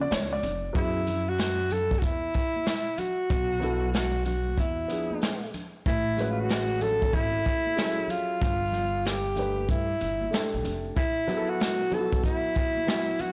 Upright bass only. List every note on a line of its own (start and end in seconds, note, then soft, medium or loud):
0.11 0.36 C#2 medium
0.43 0.68 F1 medium
0.75 1.99 F#2 loud
2.02 2.27 E2 medium
3.30 4.54 B1 loud
4.58 4.83 E2 medium
5.86 7.10 A1 loud
7.14 7.38 G#1 medium
8.42 9.65 G1 loud
9.69 9.94 G2 medium
10.01 10.26 G1 medium
10.54 10.62 B1 medium
10.65 10.90 F1 medium